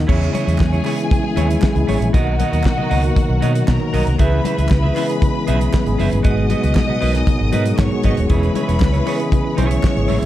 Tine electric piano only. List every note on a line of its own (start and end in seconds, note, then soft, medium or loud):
0.00 0.11 B2 medium
0.00 0.10 F#3 medium
0.00 0.10 A#3 medium
0.00 0.11 D#4 medium
0.07 0.60 C#3 medium
0.07 0.60 E3 medium
0.07 0.60 G#3 medium
0.07 0.61 B3 medium
0.07 0.61 E4 loud
0.85 0.94 C#3 medium
0.85 0.94 E3 medium
0.85 0.94 G#3 medium
0.85 0.95 B3 medium
0.85 0.95 E4 medium
0.97 1.24 C#3 medium
0.97 1.24 E3 medium
0.97 1.24 G#3 medium
0.97 1.24 B3 medium
0.97 1.25 C#4 medium
1.36 1.62 C#3 medium
1.36 1.62 E3 medium
1.36 1.63 G#3 medium
1.36 1.63 B3 medium
1.36 1.63 E4 loud
1.74 2.01 C#3 medium
1.74 2.01 E3 medium
1.74 2.01 G#3 medium
1.74 2.02 B3 medium
1.74 2.02 E4 loud
2.13 2.65 D#3 medium
2.13 2.66 F#3 medium
2.13 2.66 A#3 medium
2.13 2.66 B3 medium
2.13 2.66 F#4 loud
2.90 2.99 D#3 medium
2.90 3.00 F#3 medium
2.90 3.00 A#3 medium
2.90 3.00 B3 medium
2.90 3.00 F#4 loud
3.03 3.30 D#3 medium
3.03 3.30 F#3 medium
3.03 3.30 A#3 medium
3.03 3.30 B3 medium
3.03 3.31 F#4 loud
3.42 3.68 D#3 medium
3.42 3.68 F#3 medium
3.42 3.69 A#3 medium
3.42 3.69 B3 medium
3.42 3.69 F#4 loud
3.80 4.07 D#3 medium
3.80 4.07 F#3 medium
3.80 4.07 A#3 medium
3.80 4.07 B3 medium
3.80 4.07 F#4 loud
4.19 4.71 E3 medium
4.19 4.71 G#3 medium
4.19 4.72 B3 medium
4.19 4.72 C#4 medium
4.19 4.72 G#4 loud
4.96 5.05 E3 medium
4.96 5.05 G#3 medium
4.96 5.05 B3 medium
4.96 5.05 C#4 medium
4.96 5.06 E4 loud
5.09 5.35 E3 medium
5.09 5.35 G#3 medium
5.09 5.35 B3 medium
5.09 5.36 C#4 medium
5.09 5.36 G#4 loud
5.47 5.74 E3 loud
5.47 5.74 G#3 medium
5.47 5.74 B3 medium
5.47 5.74 C#4 medium
5.47 5.74 G#4 loud
5.85 6.12 E3 medium
5.85 6.12 G#3 medium
5.85 6.12 B3 medium
5.85 6.13 C#4 medium
5.85 6.13 G#4 loud
6.24 6.76 F#3 loud
6.24 6.76 G#3 medium
6.24 6.77 B3 medium
6.24 6.77 D#4 medium
6.24 6.77 G#4 loud
7.01 7.10 F#3 medium
7.01 7.11 G#3 medium
7.01 7.11 B3 medium
7.01 7.11 D#4 medium
7.01 7.11 A#4 loud
7.14 7.40 F#3 medium
7.14 7.41 G#3 medium
7.14 7.41 B3 medium
7.14 7.41 D#4 medium
7.14 7.41 G#4 loud
7.53 7.79 F#3 medium
7.53 7.79 G#3 medium
7.53 7.79 B3 medium
7.53 7.79 D#4 medium
7.53 7.79 A#4 loud
7.91 8.17 F#3 medium
7.91 8.17 G#3 medium
7.91 8.17 B3 medium
7.91 8.18 D#4 medium
7.91 8.18 G#4 loud
8.29 8.81 E3 medium
8.29 8.81 G#3 medium
8.29 8.82 B3 medium
8.29 8.82 C#4 medium
8.29 8.82 G#4 loud
9.06 9.15 E3 medium
9.06 9.15 G#3 medium
9.06 9.15 B3 medium
9.06 9.15 C#4 medium
9.06 9.16 G#4 loud
9.19 9.45 E3 medium
9.19 9.45 G#3 medium
9.19 9.45 B3 medium
9.19 9.46 C#4 medium
9.19 9.46 G#4 loud
9.57 9.83 E3 medium
9.57 9.83 G#3 medium
9.57 9.84 B3 medium
9.57 9.84 C#4 medium
9.57 9.84 G#4 loud
9.95 10.22 E3 medium
9.95 10.22 G#3 medium
9.95 10.22 B3 medium
9.95 10.22 C#4 medium
9.95 10.22 G#4 loud